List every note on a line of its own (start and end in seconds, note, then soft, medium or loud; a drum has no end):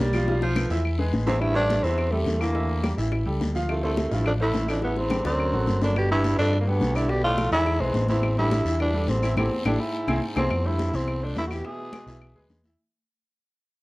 0.00 0.65 B1 medium
0.00 0.42 G3 loud
0.00 high bongo soft
0.00 low bongo medium
0.13 0.25 F3 medium
0.13 0.26 F4 medium
0.13 0.26 F5 medium
0.13 high conga medium
0.13 short guiro medium
0.13 claves medium
0.27 0.51 F3 medium
0.27 0.52 F4 medium
0.27 0.52 F5 medium
0.27 high bongo loud
0.27 high conga soft
0.42 0.82 F3 medium
0.42 high bongo loud
0.42 high conga soft
0.56 0.68 A3 medium
0.56 0.68 A4 medium
0.56 0.68 B4 medium
0.56 low bongo medium
0.56 high conga loud
0.56 short guiro medium
0.56 claves medium
0.70 1.10 E2 loud
0.70 0.94 E3 medium
0.70 0.94 E4 medium
0.70 0.94 E5 medium
0.70 high conga soft
0.70 short guiro medium
0.85 high conga soft
0.85 long guiro medium
0.85 claves medium
0.98 1.22 G#3 medium
0.98 1.22 G#4 medium
0.98 1.22 B4 medium
0.98 low bongo medium
0.98 high conga soft
1.12 1.78 A1 medium
1.12 low bongo medium
1.12 high conga medium
1.12 short guiro medium
1.26 1.42 E2 medium
1.26 1.38 E3 medium
1.26 1.43 C4 medium
1.26 1.39 E4 medium
1.26 1.39 E5 medium
1.26 low bongo medium
1.26 high conga medium
1.26 short guiro medium
1.41 1.53 G2 medium
1.41 1.55 E4 loud
1.41 high bongo medium
1.41 high conga soft
1.41 claves medium
1.54 1.84 G2 medium
1.54 1.79 G3 medium
1.54 1.85 D4 loud
1.54 1.79 G4 medium
1.54 1.79 A4 medium
1.54 high conga soft
1.70 high bongo medium
1.70 high conga medium
1.70 short guiro medium
1.83 2.12 E2 medium
1.83 2.23 E2 medium
1.83 2.07 E3 medium
1.83 2.13 C4 medium
1.83 2.08 E4 medium
1.83 2.08 E5 medium
1.83 high bongo soft
1.83 high conga soft
1.83 short guiro medium
1.98 high bongo medium
1.98 high conga soft
1.98 long guiro medium
1.98 claves medium
2.11 2.40 C2 medium
2.11 2.36 G3 medium
2.11 2.42 A3 medium
2.11 2.36 G4 medium
2.11 2.36 A4 medium
2.11 high bongo soft
2.11 high conga soft
2.26 2.92 E2 medium
2.26 high bongo soft
2.26 low bongo medium
2.26 high conga medium
2.26 short guiro medium
2.39 2.97 D2 medium
2.39 2.52 E3 medium
2.39 2.98 A#3 medium
2.39 2.53 E4 medium
2.39 2.53 E5 medium
2.39 high bongo soft
2.39 high conga soft
2.39 short guiro medium
2.39 claves medium
2.55 2.78 E3 medium
2.55 2.78 E4 medium
2.55 2.79 E5 medium
2.55 high bongo medium
2.55 high conga soft
2.55 long guiro medium
2.70 high conga soft
2.83 2.95 G3 medium
2.83 2.95 G4 medium
2.83 2.95 A#4 medium
2.83 high bongo medium
2.83 high conga medium
2.83 short guiro medium
2.83 claves medium
2.97 3.24 A1 medium
2.97 3.21 E3 medium
2.97 3.21 E4 medium
2.97 3.21 E5 medium
2.97 high bongo soft
2.97 high conga soft
2.97 short guiro medium
3.12 high bongo medium
3.12 high conga soft
3.12 long guiro medium
3.12 claves medium
3.25 3.40 C#2 medium
3.25 3.49 G3 medium
3.25 3.49 G4 medium
3.25 3.49 A4 medium
3.25 high bongo soft
3.25 high conga soft
3.40 4.06 D2 medium
3.40 high bongo soft
3.40 low bongo medium
3.40 high conga medium
3.40 short guiro medium
3.54 3.78 F3 medium
3.54 3.78 F4 medium
3.54 3.79 F5 medium
3.54 high bongo soft
3.54 high conga medium
3.54 short guiro medium
3.69 3.82 C2 medium
3.69 3.83 A3 medium
3.69 high bongo medium
3.69 high conga soft
3.69 long guiro medium
3.69 claves medium
3.82 4.14 C2 medium
3.82 4.06 A3 medium
3.82 4.14 A3 medium
3.82 4.06 A4 medium
3.82 4.06 C5 medium
3.82 high conga soft
3.97 high bongo medium
3.97 high conga medium
3.97 short guiro medium
4.11 4.51 A1 loud
4.11 4.26 G2 medium
4.11 4.34 F3 medium
4.11 4.26 E4 medium
4.11 4.35 F4 medium
4.11 4.35 F5 medium
4.11 high bongo soft
4.11 high conga soft
4.11 short guiro medium
4.26 4.33 F2 medium
4.26 4.33 D4 medium
4.26 high bongo medium
4.26 high conga soft
4.26 long guiro medium
4.26 claves medium
4.40 4.67 A2 medium
4.40 4.63 A3 medium
4.40 4.68 E4 medium
4.40 4.63 A4 medium
4.40 4.64 C5 medium
4.40 high bongo soft
4.40 high conga soft
4.54 5.20 A1 medium
4.54 high bongo soft
4.54 low bongo medium
4.54 high conga medium
4.54 short guiro medium
4.68 4.82 F2 medium
4.68 4.80 E3 medium
4.68 4.83 D4 medium
4.68 4.80 E4 medium
4.68 4.80 E5 medium
4.68 high bongo soft
4.68 high conga soft
4.68 short guiro medium
4.68 claves medium
4.82 4.97 E2 medium
4.82 5.06 E3 medium
4.82 5.00 B3 medium
4.82 5.06 E4 medium
4.82 5.06 E5 medium
4.82 high bongo medium
4.82 high conga soft
4.96 5.25 E2 medium
4.96 5.26 C4 medium
4.96 high bongo medium
4.96 high conga soft
5.10 5.22 G3 medium
5.10 5.22 G4 medium
5.10 5.23 A4 medium
5.10 low bongo loud
5.10 high conga medium
5.10 short guiro medium
5.10 claves medium
5.24 5.51 D2 medium
5.24 5.78 F#2 medium
5.24 5.48 D3 medium
5.24 5.79 C4 medium
5.24 5.48 D4 medium
5.24 5.48 D5 medium
5.24 high bongo medium
5.24 short guiro medium
5.38 high conga soft
5.38 long guiro medium
5.38 claves medium
5.53 5.67 A1 medium
5.53 5.77 F#3 medium
5.53 5.77 F#4 medium
5.53 5.77 A4 medium
5.53 low bongo medium
5.53 high conga soft
5.67 6.33 G1 medium
5.67 low bongo medium
5.67 high conga medium
5.67 short guiro medium
5.81 5.96 F#2 medium
5.81 6.05 D3 medium
5.81 6.05 D4 medium
5.81 5.96 D4 medium
5.81 6.05 D5 medium
5.81 low bongo medium
5.81 high conga medium
5.81 short guiro medium
5.96 6.10 B2 medium
5.96 6.10 G4 medium
5.96 high bongo medium
5.96 high conga soft
5.96 claves medium
6.10 6.38 G2 medium
6.10 6.34 G3 medium
6.10 6.38 E4 loud
6.10 6.34 G4 medium
6.10 6.34 B4 medium
6.10 high conga soft
6.24 high bongo medium
6.24 high conga medium
6.24 short guiro medium
6.38 6.59 F2 medium
6.38 6.78 G2 medium
6.38 6.62 D3 medium
6.38 6.59 D4 loud
6.38 6.62 D4 medium
6.38 6.62 D5 medium
6.38 high bongo soft
6.38 high conga soft
6.38 short guiro medium
6.53 high bongo medium
6.53 high conga soft
6.53 long guiro medium
6.53 claves medium
6.60 6.70 C2 medium
6.60 6.69 A#3 medium
6.67 6.97 D2 medium
6.67 6.91 G3 medium
6.67 6.98 B3 loud
6.67 6.90 G4 medium
6.67 6.91 B4 medium
6.67 high bongo soft
6.67 high conga soft
6.81 7.47 B1 medium
6.81 high bongo soft
6.81 low bongo medium
6.81 high conga medium
6.81 short guiro medium
6.95 7.12 G2 medium
6.95 7.07 D3 medium
6.95 7.07 D4 medium
6.95 7.11 E4 medium
6.95 7.07 D5 medium
6.95 high bongo soft
6.95 high conga soft
6.95 short guiro medium
6.95 claves medium
7.09 7.24 B2 medium
7.09 7.33 D3 medium
7.09 7.33 D4 medium
7.09 7.24 G4 loud
7.09 7.33 D5 medium
7.09 high bongo medium
7.09 high conga soft
7.09 long guiro medium
7.23 7.51 A2 medium
7.23 7.51 F4 loud
7.23 high conga soft
7.38 7.50 F3 medium
7.38 7.50 F4 medium
7.38 7.50 A4 medium
7.38 high bongo medium
7.38 high conga medium
7.38 short guiro medium
7.38 claves medium
7.52 7.78 E2 loud
7.52 7.83 G#2 medium
7.52 7.75 D3 medium
7.52 7.76 D4 medium
7.52 7.82 E4 loud
7.52 7.76 D5 medium
7.52 high bongo soft
7.52 high conga soft
7.52 short guiro medium
7.66 high bongo medium
7.66 high conga soft
7.66 long guiro medium
7.66 claves medium
7.80 7.93 B1 medium
7.80 8.09 E2 medium
7.80 8.04 G#3 medium
7.80 8.09 C4 medium
7.80 8.04 G#4 medium
7.80 8.04 B4 medium
7.80 high bongo soft
7.80 high conga soft
7.94 8.60 A1 medium
7.94 high bongo soft
7.94 low bongo medium
7.94 high conga medium
7.94 short guiro medium
8.09 8.36 E2 medium
8.09 8.32 E3 medium
8.09 8.36 C4 medium
8.09 8.33 E4 medium
8.09 8.33 E5 medium
8.09 high bongo soft
8.09 high conga medium
8.09 short guiro medium
8.23 high bongo medium
8.23 high conga soft
8.23 long guiro medium
8.23 claves medium
8.37 8.77 G2 medium
8.37 8.61 G3 medium
8.37 8.78 E4 loud
8.37 8.61 G4 medium
8.37 8.61 A4 medium
8.37 high conga soft
8.51 high bongo medium
8.51 high conga medium
8.51 short guiro medium
8.65 9.05 E2 medium
8.65 8.89 E3 medium
8.65 8.89 E4 medium
8.65 8.90 E5 medium
8.65 high bongo soft
8.65 high conga soft
8.65 short guiro medium
8.80 9.10 G2 medium
8.80 9.11 D4 medium
8.80 high bongo medium
8.80 high conga soft
8.80 long guiro medium
8.80 claves medium
8.94 9.17 G3 medium
8.94 9.18 G4 medium
8.94 9.18 A4 medium
8.94 high bongo soft
8.94 high conga soft
9.08 9.35 A1 medium
9.08 9.37 E2 medium
9.08 9.36 C4 medium
9.08 high bongo soft
9.08 low bongo medium
9.08 high conga medium
9.08 short guiro medium
9.23 9.34 E3 medium
9.23 9.35 E4 medium
9.23 9.35 E5 medium
9.23 high bongo soft
9.23 high conga soft
9.23 short guiro medium
9.23 claves medium
9.36 9.47 A1 medium
9.36 9.64 E2 medium
9.36 9.63 C4 medium
9.36 9.46 E4 medium
9.36 9.46 G4 medium
9.36 9.46 A4 medium
9.36 low bongo medium
9.36 high conga medium
9.36 long guiro medium
9.36 claves loud
9.65 9.76 A1 medium
9.65 9.81 G2 medium
9.65 9.82 D4 medium
9.65 9.75 E4 medium
9.65 9.74 G4 medium
9.65 9.74 A4 medium
9.65 low bongo medium
9.65 high conga medium
9.65 long guiro medium
9.65 claves medium
9.79 10.36 G#2 medium
9.79 10.21 E4 medium
10.07 10.18 C2 medium
10.07 10.17 C4 medium
10.07 10.17 E4 medium
10.07 10.17 G#4 medium
10.07 low bongo medium
10.07 high conga medium
10.07 long guiro medium
10.07 claves medium
10.36 10.47 C2 medium
10.36 10.68 E2 medium
10.36 10.45 C4 medium
10.36 10.68 C4 medium
10.36 10.45 E4 medium
10.36 10.45 G#4 medium
10.36 low bongo medium
10.36 high conga loud
10.36 long guiro medium
10.36 claves medium
10.50 10.90 F2 medium
10.50 high bongo medium
10.50 high conga soft
10.50 long guiro medium
10.50 claves medium
10.65 10.95 G2 medium
10.65 10.88 A3 medium
10.65 10.97 E4 loud
10.65 10.88 A4 medium
10.65 10.89 C5 medium
10.65 high conga soft
10.79 high bongo medium
10.79 high conga medium
10.79 short guiro medium
10.93 11.33 C2 loud
10.93 11.24 E2 medium
10.93 11.16 E3 medium
10.93 11.25 C4 medium
10.93 11.17 E4 medium
10.93 11.17 E5 medium
10.93 high conga soft
10.93 short guiro medium
11.08 high bongo medium
11.08 high conga soft
11.08 long guiro medium
11.08 claves medium
11.22 11.37 F2 medium
11.22 11.45 A3 medium
11.22 11.37 D4 medium
11.22 11.45 A4 medium
11.22 11.46 C5 medium
11.22 high bongo soft
11.22 high conga soft
11.36 11.61 E2 medium
11.36 11.42 G2 medium
11.36 11.43 E4 loud
11.36 high bongo soft
11.36 low bongo medium
11.36 high conga medium
11.36 short guiro medium
11.47 11.54 A2 medium
11.47 11.62 E3 medium
11.47 11.54 F#4 medium
11.51 11.66 B2 medium
11.51 11.62 E4 medium
11.51 11.68 G4 medium
11.51 11.62 E5 medium
11.51 high bongo soft
11.51 high conga soft
11.51 short guiro medium
11.51 claves medium
11.65 12.51 B2 medium
11.65 11.88 E3 medium
11.65 11.88 E4 medium
11.65 12.51 G#4 loud
11.65 11.88 E5 medium
11.65 high bongo medium
11.65 high conga soft
11.79 high conga soft
11.93 12.05 G#3 medium
11.93 12.05 G#4 medium
11.93 12.05 B4 medium
11.93 high bongo medium
11.93 high conga medium
11.93 short guiro medium
11.93 claves medium
12.07 12.33 B1 medium
12.07 12.31 E3 medium
12.07 12.31 E4 medium
12.07 12.31 E5 medium
12.07 high bongo soft
12.07 high conga soft
12.07 short guiro medium
12.21 high bongo medium
12.21 high conga soft
12.21 long guiro medium
12.21 claves medium
12.35 12.48 D2 medium
12.35 12.59 G#3 medium
12.35 12.59 G#4 medium
12.35 12.59 B4 medium
12.35 high bongo soft
12.35 high conga soft
12.49 12.74 E2 medium
12.49 high bongo soft
12.49 low bongo medium
12.49 high conga medium
12.49 short guiro medium
12.64 12.76 E3 medium
12.64 12.76 E4 medium
12.64 12.77 E5 medium
12.64 high bongo soft
12.64 high conga medium
12.64 short guiro medium